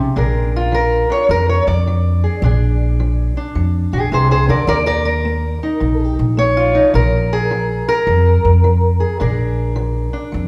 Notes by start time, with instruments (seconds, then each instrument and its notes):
Already playing: steel-string acoustic guitar C3 C#4 D#4
0.16 upright bass A#1, steel-string acoustic guitar A#2 D4 G#4 A#4
0.56 steel-string acoustic guitar F4
0.72 steel-string acoustic guitar F3 A#4
1.10 steel-string acoustic guitar D4 C#5
1.29 upright bass F2, steel-string acoustic guitar F3 A#4
1.49 steel-string acoustic guitar C#5
1.67 upright bass F2, steel-string acoustic guitar D5
1.87 steel-string acoustic guitar F3
2.24 steel-string acoustic guitar G#4
2.42 upright bass A#1, steel-string acoustic guitar A#2 D4 G#4
3.00 steel-string acoustic guitar F3
3.37 steel-string acoustic guitar D4
3.55 upright bass F2, steel-string acoustic guitar F3
3.93 upright bass A#1, steel-string acoustic guitar G#4 C5
4.12 upright bass C2, steel-string acoustic guitar C3 G#4 C5
4.31 steel-string acoustic guitar G#4 C5
4.49 upright bass D2, steel-string acoustic guitar D3 A#4 D5
4.67 upright bass D#2, steel-string acoustic guitar D#3 A#4 D5
4.86 steel-string acoustic guitar A#4 D5
5.05 steel-string acoustic guitar A#4
5.25 steel-string acoustic guitar A#3
5.63 steel-string acoustic guitar D#4
5.80 upright bass A#1, steel-string acoustic guitar A#2
6.19 upright bass A#1
6.37 steel-string acoustic guitar A#3 C#5
6.57 steel-string acoustic guitar F4
6.75 steel-string acoustic guitar D#4
6.94 upright bass A#1, steel-string acoustic guitar A#2 A#4
7.33 steel-string acoustic guitar G#4
7.51 steel-string acoustic guitar F3
7.89 steel-string acoustic guitar A#4
8.07 upright bass F2, steel-string acoustic guitar F3
8.45 upright bass F2
8.64 steel-string acoustic guitar F3
9.00 steel-string acoustic guitar G#4
9.20 upright bass A#1, steel-string acoustic guitar A#2 D4 G#4 A#4
9.76 steel-string acoustic guitar F3
10.13 steel-string acoustic guitar D4
10.32 upright bass F2, steel-string acoustic guitar F3